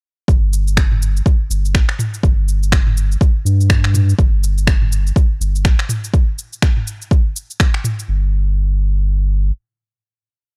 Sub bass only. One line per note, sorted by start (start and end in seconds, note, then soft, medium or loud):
0.28 1.21 G1 medium
1.50 1.76 G1 medium
1.75 1.85 A#1 medium
2.23 3.16 G1 medium
3.45 4.14 G2 medium
4.19 5.11 G1 loud
5.40 5.66 G1 medium
5.65 5.75 A#1 medium
8.08 9.51 G1 loud